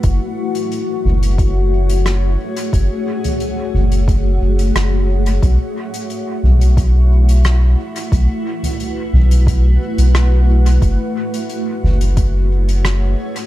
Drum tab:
HH |x--xx--xx--xx--x|x--xx--xx--xx--x|x--xx--xx--xx--x|x--xx--xx--xx--x|
SD |------------r---|------------r---|------------r---|------------r---|
T2 |------o---------|---o--o---------|------o---------|---o--o---------|
BD |o-------o-------|o-------o-------|o-------o-------|o-------o-------|

HH |x--xx--xx--xx--x|
SD |------------r---|
T2 |------o---------|
BD |o-------o-------|